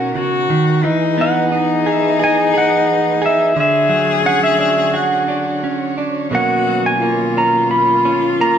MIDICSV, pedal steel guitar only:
0, 0, Header, 1, 2, 480
1, 0, Start_track
1, 0, Tempo, 680272
1, 596, Time_signature, 4, 2, 24, 8
1, 2998, Tempo, 688863
1, 6018, End_track
2, 0, Start_track
2, 0, Title_t, "Pedal steel guitar"
2, 0, Program_c, 0, 26
2, 0, Note_on_c, 0, 78, 76
2, 337, Note_off_c, 0, 78, 0
2, 855, Note_on_c, 0, 78, 90
2, 1363, Note_off_c, 0, 78, 0
2, 1363, Note_on_c, 0, 76, 90
2, 1575, Note_off_c, 0, 76, 0
2, 1578, Note_on_c, 0, 80, 92
2, 1814, Note_off_c, 0, 80, 0
2, 1819, Note_on_c, 0, 78, 100
2, 2298, Note_on_c, 0, 76, 79
2, 2302, Note_off_c, 0, 78, 0
2, 2512, Note_off_c, 0, 76, 0
2, 2542, Note_on_c, 0, 76, 81
2, 3005, Note_off_c, 0, 76, 0
2, 3008, Note_on_c, 0, 78, 94
2, 3125, Note_off_c, 0, 78, 0
2, 3128, Note_on_c, 0, 76, 81
2, 3239, Note_off_c, 0, 76, 0
2, 3248, Note_on_c, 0, 76, 75
2, 3488, Note_on_c, 0, 78, 75
2, 3489, Note_off_c, 0, 76, 0
2, 4178, Note_off_c, 0, 78, 0
2, 4461, Note_on_c, 0, 78, 83
2, 4816, Note_off_c, 0, 78, 0
2, 4819, Note_on_c, 0, 80, 92
2, 5176, Note_off_c, 0, 80, 0
2, 5179, Note_on_c, 0, 82, 93
2, 5406, Note_off_c, 0, 82, 0
2, 5409, Note_on_c, 0, 83, 93
2, 5897, Note_off_c, 0, 83, 0
2, 5900, Note_on_c, 0, 82, 87
2, 6018, Note_off_c, 0, 82, 0
2, 6018, End_track
0, 0, End_of_file